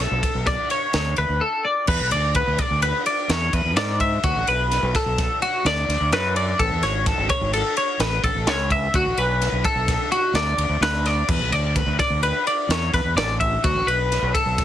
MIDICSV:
0, 0, Header, 1, 4, 480
1, 0, Start_track
1, 0, Tempo, 470588
1, 1921, Time_signature, 5, 2, 24, 8
1, 14937, End_track
2, 0, Start_track
2, 0, Title_t, "Clean electric guitar"
2, 0, Program_c, 0, 27
2, 9, Note_on_c, 0, 69, 84
2, 476, Note_off_c, 0, 69, 0
2, 481, Note_on_c, 0, 74, 90
2, 719, Note_off_c, 0, 74, 0
2, 726, Note_on_c, 0, 73, 77
2, 1202, Note_off_c, 0, 73, 0
2, 1206, Note_on_c, 0, 71, 74
2, 1440, Note_on_c, 0, 69, 86
2, 1443, Note_off_c, 0, 71, 0
2, 1679, Note_on_c, 0, 74, 72
2, 1680, Note_off_c, 0, 69, 0
2, 1917, Note_off_c, 0, 74, 0
2, 1921, Note_on_c, 0, 71, 85
2, 2158, Note_off_c, 0, 71, 0
2, 2162, Note_on_c, 0, 74, 89
2, 2402, Note_off_c, 0, 74, 0
2, 2407, Note_on_c, 0, 71, 99
2, 2642, Note_off_c, 0, 71, 0
2, 2642, Note_on_c, 0, 74, 90
2, 2878, Note_off_c, 0, 74, 0
2, 2882, Note_on_c, 0, 71, 88
2, 3123, Note_off_c, 0, 71, 0
2, 3127, Note_on_c, 0, 74, 85
2, 3367, Note_off_c, 0, 74, 0
2, 3367, Note_on_c, 0, 73, 88
2, 3610, Note_off_c, 0, 73, 0
2, 3610, Note_on_c, 0, 71, 78
2, 3839, Note_off_c, 0, 71, 0
2, 3844, Note_on_c, 0, 74, 93
2, 4084, Note_off_c, 0, 74, 0
2, 4088, Note_on_c, 0, 76, 86
2, 4325, Note_on_c, 0, 66, 84
2, 4327, Note_off_c, 0, 76, 0
2, 4565, Note_off_c, 0, 66, 0
2, 4574, Note_on_c, 0, 71, 93
2, 5050, Note_off_c, 0, 71, 0
2, 5058, Note_on_c, 0, 69, 85
2, 5527, Note_off_c, 0, 69, 0
2, 5531, Note_on_c, 0, 66, 81
2, 5768, Note_off_c, 0, 66, 0
2, 5779, Note_on_c, 0, 74, 95
2, 6252, Note_off_c, 0, 74, 0
2, 6256, Note_on_c, 0, 71, 88
2, 6490, Note_off_c, 0, 71, 0
2, 6494, Note_on_c, 0, 74, 77
2, 6726, Note_on_c, 0, 69, 92
2, 6729, Note_off_c, 0, 74, 0
2, 6965, Note_off_c, 0, 69, 0
2, 6968, Note_on_c, 0, 73, 81
2, 7211, Note_off_c, 0, 73, 0
2, 7211, Note_on_c, 0, 69, 91
2, 7442, Note_off_c, 0, 69, 0
2, 7446, Note_on_c, 0, 73, 89
2, 7683, Note_off_c, 0, 73, 0
2, 7687, Note_on_c, 0, 69, 88
2, 7925, Note_off_c, 0, 69, 0
2, 7930, Note_on_c, 0, 73, 92
2, 8163, Note_off_c, 0, 73, 0
2, 8163, Note_on_c, 0, 71, 87
2, 8402, Note_off_c, 0, 71, 0
2, 8406, Note_on_c, 0, 69, 82
2, 8650, Note_off_c, 0, 69, 0
2, 8650, Note_on_c, 0, 73, 89
2, 8885, Note_off_c, 0, 73, 0
2, 8893, Note_on_c, 0, 76, 73
2, 9127, Note_off_c, 0, 76, 0
2, 9133, Note_on_c, 0, 66, 93
2, 9366, Note_off_c, 0, 66, 0
2, 9367, Note_on_c, 0, 71, 86
2, 9843, Note_off_c, 0, 71, 0
2, 9844, Note_on_c, 0, 69, 95
2, 10315, Note_off_c, 0, 69, 0
2, 10320, Note_on_c, 0, 66, 91
2, 10559, Note_off_c, 0, 66, 0
2, 10561, Note_on_c, 0, 74, 92
2, 11038, Note_off_c, 0, 74, 0
2, 11042, Note_on_c, 0, 71, 97
2, 11285, Note_off_c, 0, 71, 0
2, 11285, Note_on_c, 0, 74, 86
2, 11511, Note_off_c, 0, 74, 0
2, 11511, Note_on_c, 0, 71, 91
2, 11754, Note_off_c, 0, 71, 0
2, 11754, Note_on_c, 0, 74, 83
2, 11995, Note_off_c, 0, 74, 0
2, 11995, Note_on_c, 0, 71, 81
2, 12231, Note_off_c, 0, 71, 0
2, 12235, Note_on_c, 0, 74, 84
2, 12471, Note_off_c, 0, 74, 0
2, 12475, Note_on_c, 0, 71, 89
2, 12716, Note_off_c, 0, 71, 0
2, 12723, Note_on_c, 0, 74, 84
2, 12967, Note_off_c, 0, 74, 0
2, 12967, Note_on_c, 0, 73, 93
2, 13196, Note_off_c, 0, 73, 0
2, 13200, Note_on_c, 0, 71, 78
2, 13427, Note_off_c, 0, 71, 0
2, 13432, Note_on_c, 0, 74, 88
2, 13664, Note_off_c, 0, 74, 0
2, 13668, Note_on_c, 0, 76, 81
2, 13912, Note_off_c, 0, 76, 0
2, 13912, Note_on_c, 0, 66, 89
2, 14150, Note_on_c, 0, 71, 89
2, 14154, Note_off_c, 0, 66, 0
2, 14631, Note_on_c, 0, 69, 81
2, 14633, Note_off_c, 0, 71, 0
2, 14937, Note_off_c, 0, 69, 0
2, 14937, End_track
3, 0, Start_track
3, 0, Title_t, "Fingered electric bass"
3, 0, Program_c, 1, 33
3, 113, Note_on_c, 1, 35, 99
3, 216, Note_off_c, 1, 35, 0
3, 355, Note_on_c, 1, 35, 87
3, 561, Note_off_c, 1, 35, 0
3, 958, Note_on_c, 1, 38, 101
3, 1163, Note_off_c, 1, 38, 0
3, 1201, Note_on_c, 1, 38, 96
3, 1303, Note_off_c, 1, 38, 0
3, 1314, Note_on_c, 1, 38, 85
3, 1419, Note_off_c, 1, 38, 0
3, 1915, Note_on_c, 1, 40, 98
3, 2021, Note_off_c, 1, 40, 0
3, 2039, Note_on_c, 1, 35, 91
3, 2143, Note_off_c, 1, 35, 0
3, 2154, Note_on_c, 1, 38, 83
3, 2465, Note_off_c, 1, 38, 0
3, 2522, Note_on_c, 1, 38, 96
3, 2625, Note_off_c, 1, 38, 0
3, 2761, Note_on_c, 1, 38, 84
3, 2967, Note_off_c, 1, 38, 0
3, 3358, Note_on_c, 1, 40, 121
3, 3566, Note_off_c, 1, 40, 0
3, 3599, Note_on_c, 1, 40, 100
3, 3704, Note_off_c, 1, 40, 0
3, 3722, Note_on_c, 1, 40, 90
3, 3844, Note_off_c, 1, 40, 0
3, 3844, Note_on_c, 1, 44, 100
3, 4255, Note_off_c, 1, 44, 0
3, 4320, Note_on_c, 1, 38, 99
3, 4425, Note_off_c, 1, 38, 0
3, 4441, Note_on_c, 1, 33, 83
3, 4546, Note_off_c, 1, 33, 0
3, 4564, Note_on_c, 1, 35, 79
3, 4872, Note_off_c, 1, 35, 0
3, 4923, Note_on_c, 1, 35, 108
3, 5026, Note_off_c, 1, 35, 0
3, 5160, Note_on_c, 1, 35, 98
3, 5367, Note_off_c, 1, 35, 0
3, 5760, Note_on_c, 1, 38, 113
3, 5967, Note_off_c, 1, 38, 0
3, 6000, Note_on_c, 1, 38, 100
3, 6105, Note_off_c, 1, 38, 0
3, 6125, Note_on_c, 1, 38, 93
3, 6244, Note_off_c, 1, 38, 0
3, 6244, Note_on_c, 1, 42, 104
3, 6654, Note_off_c, 1, 42, 0
3, 6723, Note_on_c, 1, 33, 102
3, 6826, Note_off_c, 1, 33, 0
3, 6843, Note_on_c, 1, 40, 90
3, 6946, Note_off_c, 1, 40, 0
3, 6960, Note_on_c, 1, 32, 89
3, 7269, Note_off_c, 1, 32, 0
3, 7318, Note_on_c, 1, 32, 102
3, 7423, Note_off_c, 1, 32, 0
3, 7557, Note_on_c, 1, 32, 91
3, 7765, Note_off_c, 1, 32, 0
3, 8152, Note_on_c, 1, 33, 96
3, 8361, Note_off_c, 1, 33, 0
3, 8397, Note_on_c, 1, 33, 103
3, 8502, Note_off_c, 1, 33, 0
3, 8513, Note_on_c, 1, 33, 85
3, 8634, Note_off_c, 1, 33, 0
3, 8634, Note_on_c, 1, 37, 91
3, 9047, Note_off_c, 1, 37, 0
3, 9117, Note_on_c, 1, 38, 94
3, 9221, Note_off_c, 1, 38, 0
3, 9236, Note_on_c, 1, 33, 87
3, 9340, Note_off_c, 1, 33, 0
3, 9356, Note_on_c, 1, 35, 96
3, 9665, Note_off_c, 1, 35, 0
3, 9710, Note_on_c, 1, 35, 97
3, 9817, Note_off_c, 1, 35, 0
3, 9947, Note_on_c, 1, 35, 94
3, 10157, Note_off_c, 1, 35, 0
3, 10541, Note_on_c, 1, 38, 115
3, 10753, Note_off_c, 1, 38, 0
3, 10787, Note_on_c, 1, 38, 99
3, 10894, Note_off_c, 1, 38, 0
3, 10905, Note_on_c, 1, 38, 86
3, 11013, Note_off_c, 1, 38, 0
3, 11022, Note_on_c, 1, 38, 105
3, 11438, Note_off_c, 1, 38, 0
3, 11509, Note_on_c, 1, 40, 99
3, 11615, Note_off_c, 1, 40, 0
3, 11621, Note_on_c, 1, 35, 80
3, 11730, Note_off_c, 1, 35, 0
3, 11735, Note_on_c, 1, 38, 80
3, 12052, Note_off_c, 1, 38, 0
3, 12101, Note_on_c, 1, 38, 101
3, 12210, Note_off_c, 1, 38, 0
3, 12343, Note_on_c, 1, 38, 96
3, 12554, Note_off_c, 1, 38, 0
3, 12941, Note_on_c, 1, 40, 105
3, 13152, Note_off_c, 1, 40, 0
3, 13194, Note_on_c, 1, 40, 102
3, 13297, Note_off_c, 1, 40, 0
3, 13303, Note_on_c, 1, 40, 82
3, 13416, Note_on_c, 1, 33, 103
3, 13431, Note_off_c, 1, 40, 0
3, 13834, Note_off_c, 1, 33, 0
3, 13913, Note_on_c, 1, 38, 112
3, 14012, Note_off_c, 1, 38, 0
3, 14018, Note_on_c, 1, 33, 99
3, 14128, Note_off_c, 1, 33, 0
3, 14140, Note_on_c, 1, 35, 95
3, 14454, Note_off_c, 1, 35, 0
3, 14505, Note_on_c, 1, 35, 100
3, 14612, Note_off_c, 1, 35, 0
3, 14746, Note_on_c, 1, 35, 102
3, 14937, Note_off_c, 1, 35, 0
3, 14937, End_track
4, 0, Start_track
4, 0, Title_t, "Drums"
4, 0, Note_on_c, 9, 51, 92
4, 4, Note_on_c, 9, 38, 35
4, 101, Note_off_c, 9, 51, 0
4, 106, Note_off_c, 9, 38, 0
4, 234, Note_on_c, 9, 36, 90
4, 236, Note_on_c, 9, 51, 92
4, 336, Note_off_c, 9, 36, 0
4, 338, Note_off_c, 9, 51, 0
4, 474, Note_on_c, 9, 51, 98
4, 476, Note_on_c, 9, 36, 100
4, 479, Note_on_c, 9, 38, 38
4, 576, Note_off_c, 9, 51, 0
4, 578, Note_off_c, 9, 36, 0
4, 581, Note_off_c, 9, 38, 0
4, 715, Note_on_c, 9, 51, 75
4, 817, Note_off_c, 9, 51, 0
4, 952, Note_on_c, 9, 51, 94
4, 957, Note_on_c, 9, 38, 95
4, 1054, Note_off_c, 9, 51, 0
4, 1059, Note_off_c, 9, 38, 0
4, 1187, Note_on_c, 9, 51, 65
4, 1289, Note_off_c, 9, 51, 0
4, 1909, Note_on_c, 9, 49, 118
4, 1918, Note_on_c, 9, 36, 101
4, 2011, Note_off_c, 9, 49, 0
4, 2020, Note_off_c, 9, 36, 0
4, 2154, Note_on_c, 9, 51, 91
4, 2256, Note_off_c, 9, 51, 0
4, 2393, Note_on_c, 9, 51, 119
4, 2398, Note_on_c, 9, 36, 103
4, 2495, Note_off_c, 9, 51, 0
4, 2500, Note_off_c, 9, 36, 0
4, 2637, Note_on_c, 9, 51, 95
4, 2640, Note_on_c, 9, 36, 92
4, 2739, Note_off_c, 9, 51, 0
4, 2742, Note_off_c, 9, 36, 0
4, 2878, Note_on_c, 9, 51, 114
4, 2980, Note_off_c, 9, 51, 0
4, 3120, Note_on_c, 9, 51, 88
4, 3222, Note_off_c, 9, 51, 0
4, 3361, Note_on_c, 9, 51, 111
4, 3366, Note_on_c, 9, 38, 108
4, 3463, Note_off_c, 9, 51, 0
4, 3468, Note_off_c, 9, 38, 0
4, 3602, Note_on_c, 9, 36, 77
4, 3603, Note_on_c, 9, 51, 77
4, 3704, Note_off_c, 9, 36, 0
4, 3705, Note_off_c, 9, 51, 0
4, 3840, Note_on_c, 9, 51, 107
4, 3845, Note_on_c, 9, 38, 127
4, 3942, Note_off_c, 9, 51, 0
4, 3947, Note_off_c, 9, 38, 0
4, 4081, Note_on_c, 9, 36, 81
4, 4082, Note_on_c, 9, 51, 80
4, 4183, Note_off_c, 9, 36, 0
4, 4184, Note_off_c, 9, 51, 0
4, 4320, Note_on_c, 9, 51, 112
4, 4322, Note_on_c, 9, 36, 118
4, 4422, Note_off_c, 9, 51, 0
4, 4424, Note_off_c, 9, 36, 0
4, 4563, Note_on_c, 9, 51, 79
4, 4665, Note_off_c, 9, 51, 0
4, 4809, Note_on_c, 9, 51, 99
4, 4814, Note_on_c, 9, 38, 38
4, 4911, Note_off_c, 9, 51, 0
4, 4916, Note_off_c, 9, 38, 0
4, 5047, Note_on_c, 9, 36, 96
4, 5047, Note_on_c, 9, 51, 87
4, 5052, Note_on_c, 9, 38, 44
4, 5149, Note_off_c, 9, 36, 0
4, 5149, Note_off_c, 9, 51, 0
4, 5154, Note_off_c, 9, 38, 0
4, 5287, Note_on_c, 9, 51, 100
4, 5288, Note_on_c, 9, 36, 120
4, 5292, Note_on_c, 9, 38, 36
4, 5389, Note_off_c, 9, 51, 0
4, 5390, Note_off_c, 9, 36, 0
4, 5394, Note_off_c, 9, 38, 0
4, 5529, Note_on_c, 9, 51, 76
4, 5631, Note_off_c, 9, 51, 0
4, 5771, Note_on_c, 9, 51, 104
4, 5776, Note_on_c, 9, 38, 107
4, 5873, Note_off_c, 9, 51, 0
4, 5878, Note_off_c, 9, 38, 0
4, 6015, Note_on_c, 9, 51, 85
4, 6020, Note_on_c, 9, 38, 36
4, 6117, Note_off_c, 9, 51, 0
4, 6122, Note_off_c, 9, 38, 0
4, 6247, Note_on_c, 9, 51, 122
4, 6253, Note_on_c, 9, 38, 116
4, 6349, Note_off_c, 9, 51, 0
4, 6355, Note_off_c, 9, 38, 0
4, 6488, Note_on_c, 9, 51, 86
4, 6590, Note_off_c, 9, 51, 0
4, 6727, Note_on_c, 9, 36, 103
4, 6727, Note_on_c, 9, 51, 115
4, 6829, Note_off_c, 9, 36, 0
4, 6829, Note_off_c, 9, 51, 0
4, 6964, Note_on_c, 9, 51, 86
4, 6969, Note_on_c, 9, 38, 38
4, 7066, Note_off_c, 9, 51, 0
4, 7071, Note_off_c, 9, 38, 0
4, 7204, Note_on_c, 9, 51, 109
4, 7205, Note_on_c, 9, 36, 111
4, 7209, Note_on_c, 9, 38, 30
4, 7306, Note_off_c, 9, 51, 0
4, 7307, Note_off_c, 9, 36, 0
4, 7311, Note_off_c, 9, 38, 0
4, 7440, Note_on_c, 9, 51, 101
4, 7443, Note_on_c, 9, 36, 95
4, 7542, Note_off_c, 9, 51, 0
4, 7545, Note_off_c, 9, 36, 0
4, 7685, Note_on_c, 9, 51, 124
4, 7787, Note_off_c, 9, 51, 0
4, 7922, Note_on_c, 9, 51, 81
4, 8024, Note_off_c, 9, 51, 0
4, 8158, Note_on_c, 9, 51, 110
4, 8163, Note_on_c, 9, 38, 105
4, 8260, Note_off_c, 9, 51, 0
4, 8265, Note_off_c, 9, 38, 0
4, 8401, Note_on_c, 9, 36, 82
4, 8403, Note_on_c, 9, 51, 78
4, 8503, Note_off_c, 9, 36, 0
4, 8505, Note_off_c, 9, 51, 0
4, 8639, Note_on_c, 9, 51, 112
4, 8645, Note_on_c, 9, 38, 118
4, 8741, Note_off_c, 9, 51, 0
4, 8747, Note_off_c, 9, 38, 0
4, 8878, Note_on_c, 9, 36, 74
4, 8880, Note_on_c, 9, 51, 80
4, 8980, Note_off_c, 9, 36, 0
4, 8982, Note_off_c, 9, 51, 0
4, 9117, Note_on_c, 9, 51, 100
4, 9119, Note_on_c, 9, 36, 107
4, 9219, Note_off_c, 9, 51, 0
4, 9221, Note_off_c, 9, 36, 0
4, 9359, Note_on_c, 9, 51, 83
4, 9461, Note_off_c, 9, 51, 0
4, 9604, Note_on_c, 9, 51, 108
4, 9609, Note_on_c, 9, 38, 33
4, 9706, Note_off_c, 9, 51, 0
4, 9711, Note_off_c, 9, 38, 0
4, 9838, Note_on_c, 9, 36, 93
4, 9841, Note_on_c, 9, 51, 88
4, 9940, Note_off_c, 9, 36, 0
4, 9943, Note_off_c, 9, 51, 0
4, 10079, Note_on_c, 9, 36, 115
4, 10083, Note_on_c, 9, 51, 117
4, 10088, Note_on_c, 9, 38, 39
4, 10181, Note_off_c, 9, 36, 0
4, 10185, Note_off_c, 9, 51, 0
4, 10190, Note_off_c, 9, 38, 0
4, 10321, Note_on_c, 9, 51, 81
4, 10423, Note_off_c, 9, 51, 0
4, 10554, Note_on_c, 9, 51, 97
4, 10559, Note_on_c, 9, 38, 99
4, 10656, Note_off_c, 9, 51, 0
4, 10661, Note_off_c, 9, 38, 0
4, 10795, Note_on_c, 9, 51, 88
4, 10897, Note_off_c, 9, 51, 0
4, 11041, Note_on_c, 9, 51, 127
4, 11046, Note_on_c, 9, 38, 120
4, 11143, Note_off_c, 9, 51, 0
4, 11148, Note_off_c, 9, 38, 0
4, 11277, Note_on_c, 9, 51, 89
4, 11282, Note_on_c, 9, 38, 38
4, 11379, Note_off_c, 9, 51, 0
4, 11384, Note_off_c, 9, 38, 0
4, 11512, Note_on_c, 9, 57, 105
4, 11513, Note_on_c, 9, 36, 126
4, 11614, Note_off_c, 9, 57, 0
4, 11615, Note_off_c, 9, 36, 0
4, 11755, Note_on_c, 9, 51, 81
4, 11857, Note_off_c, 9, 51, 0
4, 11992, Note_on_c, 9, 51, 107
4, 11993, Note_on_c, 9, 36, 104
4, 12094, Note_off_c, 9, 51, 0
4, 12095, Note_off_c, 9, 36, 0
4, 12234, Note_on_c, 9, 36, 91
4, 12234, Note_on_c, 9, 51, 87
4, 12240, Note_on_c, 9, 38, 42
4, 12336, Note_off_c, 9, 36, 0
4, 12336, Note_off_c, 9, 51, 0
4, 12342, Note_off_c, 9, 38, 0
4, 12472, Note_on_c, 9, 51, 115
4, 12574, Note_off_c, 9, 51, 0
4, 12718, Note_on_c, 9, 51, 83
4, 12820, Note_off_c, 9, 51, 0
4, 12957, Note_on_c, 9, 51, 98
4, 12962, Note_on_c, 9, 38, 107
4, 13059, Note_off_c, 9, 51, 0
4, 13064, Note_off_c, 9, 38, 0
4, 13195, Note_on_c, 9, 36, 74
4, 13200, Note_on_c, 9, 51, 75
4, 13205, Note_on_c, 9, 38, 31
4, 13297, Note_off_c, 9, 36, 0
4, 13302, Note_off_c, 9, 51, 0
4, 13307, Note_off_c, 9, 38, 0
4, 13437, Note_on_c, 9, 51, 106
4, 13442, Note_on_c, 9, 38, 124
4, 13539, Note_off_c, 9, 51, 0
4, 13544, Note_off_c, 9, 38, 0
4, 13674, Note_on_c, 9, 36, 71
4, 13674, Note_on_c, 9, 51, 82
4, 13776, Note_off_c, 9, 36, 0
4, 13776, Note_off_c, 9, 51, 0
4, 13912, Note_on_c, 9, 51, 108
4, 13915, Note_on_c, 9, 36, 121
4, 14014, Note_off_c, 9, 51, 0
4, 14017, Note_off_c, 9, 36, 0
4, 14159, Note_on_c, 9, 51, 76
4, 14261, Note_off_c, 9, 51, 0
4, 14401, Note_on_c, 9, 51, 103
4, 14406, Note_on_c, 9, 38, 38
4, 14503, Note_off_c, 9, 51, 0
4, 14508, Note_off_c, 9, 38, 0
4, 14634, Note_on_c, 9, 36, 97
4, 14637, Note_on_c, 9, 51, 91
4, 14736, Note_off_c, 9, 36, 0
4, 14739, Note_off_c, 9, 51, 0
4, 14874, Note_on_c, 9, 51, 117
4, 14875, Note_on_c, 9, 36, 114
4, 14879, Note_on_c, 9, 38, 38
4, 14937, Note_off_c, 9, 36, 0
4, 14937, Note_off_c, 9, 38, 0
4, 14937, Note_off_c, 9, 51, 0
4, 14937, End_track
0, 0, End_of_file